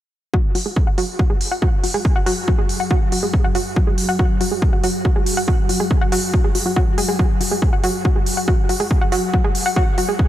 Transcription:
0.34 F#3 F#4, kick
0.55 F#4, open hi-hat
0.66 G#4
0.76 kick
0.87 F#5
0.98 F#4, open hi-hat
1.19 F#4, kick
1.30 G#4
1.41 open hi-hat
1.51 F#5
1.62 F#4, kick
1.84 F#4, open hi-hat
1.94 G#4, open hi-hat
2.05 kick
2.16 F#5
2.26 F#4, open hi-hat
2.48 F#4, kick
2.58 G#4
2.69 open hi-hat
2.80 F#5
2.91 F#4, kick
3.12 F#4, open hi-hat
3.23 G#4
3.34 kick
3.44 F#5
3.55 F#4, open hi-hat
3.76 F#4, kick
3.87 G#4
3.98 open hi-hat
4.09 F#5
4.19 F#4, kick
4.41 F#4, open hi-hat
4.52 G#4
4.62 kick
4.73 F#5
4.84 F#4, open hi-hat
5.05 F#4, kick
5.16 G#4
5.26 open hi-hat
5.37 F#5, open hi-hat
5.48 F#4, kick
5.69 F#4, open hi-hat
5.80 G#4
5.91 kick
6.01 F#5
6.12 F#4, open hi-hat
6.34 F#4, kick
6.44 G#4
6.55 F#4, open hi-hat
6.66 F#4
6.76 F#4, kick
6.98 G#4, open hi-hat
7.08 G#4
7.19 F#4, kick
7.41 F#4, open hi-hat
7.51 G#4
7.62 kick
7.73 F#5
7.84 F#4, open hi-hat
8.05 F#4, kick
8.16 G#4
8.26 open hi-hat
8.37 F#5
8.48 F#4, kick
8.69 F#4, open hi-hat
8.80 G#4, open hi-hat
8.91 kick
9.01 F#5
9.12 F#4, open hi-hat
9.34 F#4, kick
9.44 G#4
9.55 open hi-hat
9.66 F#5
9.76 F#4, kick
9.98 F#4, open hi-hat
10.09 G#4
10.19 kick

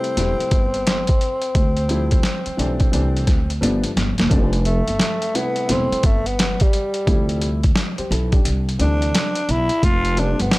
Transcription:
Already playing: C3 G3 A3 C4 E4 B4
0.04 closed hi-hat
0.16 E1 C3 G3 A3 C4 E4, snare, closed hi-hat
0.39 muted upright bass stroke, closed hi-hat
0.51 G1, kick, closed hi-hat
0.74 closed hi-hat
0.87 snare, closed hi-hat
1.07 kick, closed hi-hat
1.21 closed hi-hat
1.42 closed hi-hat
1.55 D2, kick, closed hi-hat
1.77 closed hi-hat
1.88 F3 G3 A3 C4 E4, closed hi-hat
2.11 kick, closed hi-hat
2.23 snare, closed hi-hat
2.46 muted upright bass stroke, closed hi-hat
2.57 B1 E3 G3 A3 C4 D4, closed hi-hat
2.80 kick, closed hi-hat
2.92 C2 E3 G3 A3 C4 D4, closed hi-hat
3.17 closed hi-hat
3.27 D2, kick, snare, closed hi-hat
3.50 closed hi-hat
3.61 G1 F3 G3 A3 B3 D4, closed hi-hat
3.84 closed hi-hat
3.96 G1, snare, closed hi-hat
4.18 F#1, snare, closed hi-hat
4.29 F1 F3 G3 A3 C4 D4, kick, closed hi-hat
4.53 closed hi-hat
4.65 A3, closed hi-hat
4.88 G1, closed hi-hat
5.00 snare, closed hi-hat
5.22 closed hi-hat
5.34 C3 G3 A3 B3 E4 B4, closed hi-hat
5.56 closed hi-hat
5.68 E1 C3 G3 A3 C4 E4, snare, closed hi-hat
5.92 muted upright bass stroke, closed hi-hat
6.03 G1 A3, kick, closed hi-hat
6.26 B3, closed hi-hat
6.39 snare, closed hi-hat
6.60 G3, kick, closed hi-hat
6.73 closed hi-hat
6.94 closed hi-hat
7.06 D2 C3 F3 G3 A3 E4, kick, closed hi-hat
7.29 closed hi-hat
7.42 closed hi-hat
7.63 kick, closed hi-hat
7.76 snare, closed hi-hat
7.98 G4 C5, muted upright bass stroke, closed hi-hat
8.11 B1 E4 A4, closed hi-hat
8.32 D4 G4, kick, closed hi-hat
8.45 C2, closed hi-hat
8.69 closed hi-hat
8.79 D2 C3 E3 G3 A3 D4, closed hi-hat
9.02 closed hi-hat
9.15 snare, closed hi-hat
9.35 closed hi-hat
9.49 B1 E4, closed hi-hat
9.69 closed hi-hat
9.83 F1 F4, kick, closed hi-hat
10.05 closed hi-hat
10.16 C3 F3 G3 A3 D4, closed hi-hat
10.40 G1 B3, closed hi-hat
10.51 snare, closed hi-hat

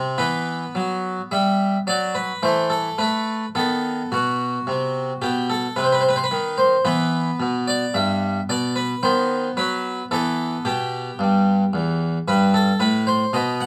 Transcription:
Already playing: C3
0.18 E3 B3 B4
0.75 F#3
1.31 G3 E5
1.87 F#3 D5
2.15 B4
2.43 E3 A3 C5
2.70 A4
2.98 A3 B4
3.55 D#3 B3 A4
4.12 B2 F#4
4.67 C3
5.22 B2 G4
5.50 A4
5.76 C3 B4
5.84 C5
5.92 B4
6.01 C5
6.09 B4
6.16 C5
6.24 B4
6.31 D#3
6.58 C5
6.85 E3 B3 B4
7.40 B2
7.67 D5
7.94 G2 E5
8.49 B2 D5
8.76 B4
9.03 D#3 B3 C5
9.57 F#3 B4
10.11 E3 B3 A4
10.65 B2 G4
11.19 G2
11.73 E2
12.28 G2 B4
12.54 A4
12.80 A2 B4
13.07 C5
13.33 B2 B3 D#5
13.61 F#5

